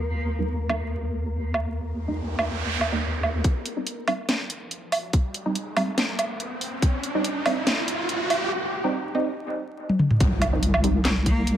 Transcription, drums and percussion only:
0.70 low woodblock
1.54 low woodblock
2.39 low woodblock
2.81 low woodblock
3.23 low woodblock
3.44 kick, closed hi-hat
3.65 closed hi-hat
3.87 closed hi-hat
4.08 open hi-hat, low woodblock
4.29 snare, closed hi-hat
4.50 closed hi-hat
4.71 closed hi-hat
4.92 open hi-hat, low woodblock
5.13 kick, closed hi-hat
5.34 closed hi-hat
5.55 closed hi-hat
5.77 open hi-hat, low woodblock
5.98 snare, closed hi-hat
6.19 closed hi-hat, low woodblock
6.40 closed hi-hat
6.61 open hi-hat
6.82 kick, closed hi-hat
7.03 closed hi-hat
7.24 closed hi-hat
7.46 open hi-hat, low woodblock
7.67 snare, closed hi-hat
7.88 closed hi-hat
8.09 closed hi-hat
8.30 open hi-hat, low woodblock
9.89 high tom
9.99 mid tom
10.11 mid tom
10.20 kick, closed hi-hat
10.42 closed hi-hat, low woodblock
10.63 closed hi-hat
10.74 low woodblock
10.84 closed hi-hat
11.05 snare, clap, closed hi-hat
11.26 kick, closed hi-hat
11.47 closed hi-hat

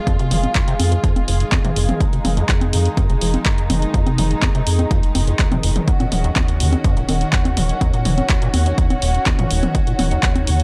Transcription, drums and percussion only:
0.07 kick, closed hi-hat, high conga
0.19 closed hi-hat
0.31 open hi-hat, mid tom
0.44 closed hi-hat, high conga
0.55 kick, clap, closed hi-hat
0.68 closed hi-hat
0.80 open hi-hat, high conga
0.92 closed hi-hat
1.04 kick, closed hi-hat
1.16 closed hi-hat, high conga
1.28 open hi-hat
1.40 closed hi-hat
1.52 kick, clap, closed hi-hat, high conga
1.65 closed hi-hat, mid tom
1.76 open hi-hat
1.89 closed hi-hat, mid tom, high conga
2.00 kick, closed hi-hat
2.13 closed hi-hat
2.25 open hi-hat, mid tom, high conga
2.37 closed hi-hat
2.49 kick, clap, closed hi-hat
2.61 closed hi-hat, high conga
2.73 open hi-hat
2.85 closed hi-hat
2.97 kick, closed hi-hat, high conga
3.10 closed hi-hat
3.21 open hi-hat
3.34 closed hi-hat, high conga
3.45 kick, clap, closed hi-hat
3.58 closed hi-hat
3.70 open hi-hat, mid tom, high conga
3.82 closed hi-hat
3.94 kick, closed hi-hat
4.07 closed hi-hat, high conga
4.18 open hi-hat, mid tom
4.31 closed hi-hat
4.42 kick, clap, closed hi-hat, high conga
4.55 closed hi-hat
4.67 open hi-hat
4.79 closed hi-hat, high conga
4.91 kick, closed hi-hat
5.03 closed hi-hat
5.15 open hi-hat, high conga
5.27 closed hi-hat
5.39 kick, clap, closed hi-hat
5.52 closed hi-hat, mid tom, high conga
5.63 open hi-hat
5.76 closed hi-hat, mid tom
5.88 kick, closed hi-hat
6.00 closed hi-hat, high conga
6.12 open hi-hat, mid tom
6.24 closed hi-hat
6.36 kick, clap, closed hi-hat, high conga
6.48 closed hi-hat
6.60 open hi-hat
6.73 closed hi-hat, high conga
6.84 kick, closed hi-hat
6.97 closed hi-hat
7.09 open hi-hat, high conga
7.21 closed hi-hat
7.33 kick, clap, closed hi-hat
7.45 closed hi-hat, high conga
7.57 open hi-hat, mid tom
7.69 closed hi-hat
7.81 kick, closed hi-hat, high conga
7.94 closed hi-hat
8.05 open hi-hat, mid tom
8.18 closed hi-hat, high conga
8.29 kick, clap, closed hi-hat
8.42 closed hi-hat
8.54 open hi-hat, high conga
8.66 closed hi-hat
8.78 kick, closed hi-hat
8.90 closed hi-hat, high conga
9.02 open hi-hat
9.15 closed hi-hat
9.26 kick, clap, closed hi-hat, high conga
9.39 closed hi-hat, mid tom
9.51 open hi-hat
9.63 closed hi-hat, mid tom, high conga
9.75 kick, closed hi-hat
9.87 closed hi-hat
9.99 open hi-hat, mid tom, high conga
10.11 closed hi-hat
10.23 kick, clap, closed hi-hat
10.36 closed hi-hat, high conga
10.47 open hi-hat
10.60 closed hi-hat

